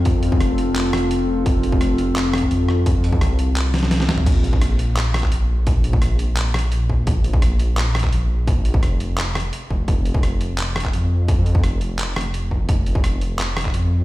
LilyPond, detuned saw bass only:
\new Staff \with { instrumentName = "Detuned saw bass" } { \clef bass \time 4/4 \key f \phrygian \tempo 4 = 171 f,4 f,,4. f,,4. | f,,2. f,4~ | f,4 c,2. | bes,,2. bes,,4~ |
bes,,4 bes,,4. bes,,4. | bes,,2. bes,,4~ | bes,,4 f,,2 r8 f,,8 | f,,2. f,4~ |
f,4 f,,4. f,,4. | f,,2. f,4 | }